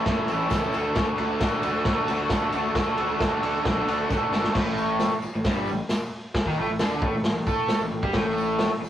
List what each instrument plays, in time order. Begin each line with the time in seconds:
0.06 picked electric bass G1, overdriven electric guitar A2 E3 A3 C#4 E4 A4, kick, snare, ride
0.28 picked electric bass A1, overdriven electric guitar A2 E3 A3 C#4 E4 A4, ride, tambourine
0.50 picked electric bass C#2, overdriven electric guitar A2 E3 A3 C#4, kick, snare, ride, tambourine
0.54 overdriven electric guitar E4 A4
0.72 picked electric bass D2, overdriven electric guitar D3 A3 D4, ride, tambourine
0.77 overdriven electric guitar F#4 A4
0.95 picked electric bass D2, overdriven electric guitar D3 A3 D4 F#4 A4, kick, snare, ride, tambourine
1.18 picked electric bass D2, overdriven electric guitar D3 A3 D4 F#4 A4, ride
1.40 picked electric bass A2, overdriven electric guitar D3 A3 D4 F#4 A4, kick, snare, ride, tambourine
1.63 picked electric bass D2, overdriven electric guitar D3 A3 D4 F#4, ride, tambourine
1.67 overdriven electric guitar A4
1.85 picked electric bass D2, overdriven electric guitar D3 A3 D4 F#4 A4, kick, snare, ride
2.08 picked electric bass D2, overdriven electric guitar D3 A3 D4 F#4 A4, ride, tambourine
2.30 picked electric bass D2, overdriven electric guitar D3 A3 D4 F#4 A4, kick, snare, ride, tambourine
2.53 picked electric bass D2, overdriven electric guitar D3 A3 D4 F#4 A4, ride, tambourine
2.75 picked electric bass D2, overdriven electric guitar D3 A3 D4 F#4 A4, kick, snare, ride, tambourine
2.97 picked electric bass D2, overdriven electric guitar D3 A3 D4 F#4 A4, ride, tambourine
3.20 picked electric bass D2, overdriven electric guitar D3 A3 D4 F#4 A4, kick, snare, ride, tambourine
3.42 picked electric bass D2, overdriven electric guitar D3 A3 D4 F#4 A4, ride
3.65 picked electric bass B1, overdriven electric guitar D3 A3 D4 F#4 A4, kick, snare, ride
3.87 picked electric bass D2, overdriven electric guitar D3 A3 D4 F#4 A4, ride, tambourine
4.10 picked electric bass A2, overdriven electric guitar D3 A3 D4 F#4 A4, kick, snare, tambourine
4.32 picked electric bass G1, overdriven electric guitar D3 A3 D4 F#4 A4, snare, tambourine
4.44 snare
4.55 picked electric bass A1, overdriven electric guitar A2 A3, kick, snare, crash
4.78 tambourine
4.99 snare, open hi-hat, tambourine
5.13 muted picked electric bass stroke, muted overdriven electric guitar stroke
5.22 muted overdriven electric guitar stroke, muted picked electric bass stroke, tambourine
5.35 picked electric bass A1, overdriven electric guitar A2
5.44 picked electric bass G1, overdriven electric guitar G2 G3, kick, snare, open hi-hat, tambourine
5.67 picked electric bass A1, overdriven electric guitar A2, tambourine
5.89 snare, open hi-hat, tambourine
6.13 tambourine
6.34 kick, snare, open hi-hat
6.45 picked electric bass D#2, overdriven electric guitar D#3 D#4, kick
6.58 picked electric bass A1, overdriven electric guitar A2 A3
6.68 picked electric bass A1, overdriven electric guitar A2
6.79 picked electric bass D2, overdriven electric guitar D3 D4, snare, open hi-hat, tambourine
7.02 picked electric bass A1, overdriven electric guitar A2 A3, kick
7.13 picked electric bass A1, overdriven electric guitar A2
7.24 picked electric bass A1, overdriven electric guitar A2, snare, open hi-hat, tambourine
7.36 picked electric bass A1, overdriven electric guitar A2
7.47 picked electric bass A2, overdriven electric guitar A3 A4, kick, tambourine
7.68 snare, open hi-hat, tambourine
7.81 picked electric bass A1, overdriven electric guitar A2
7.92 picked electric bass A1, overdriven electric guitar A2
8.03 picked electric bass G2, overdriven electric guitar G3 G4, kick
8.13 picked electric bass A1, overdriven electric guitar A2 A3, kick, snare, open hi-hat
8.38 tambourine
8.59 snare, open hi-hat, tambourine
8.71 muted overdriven electric guitar stroke, muted picked electric bass stroke
8.81 muted overdriven electric guitar stroke, muted picked electric bass stroke, tambourine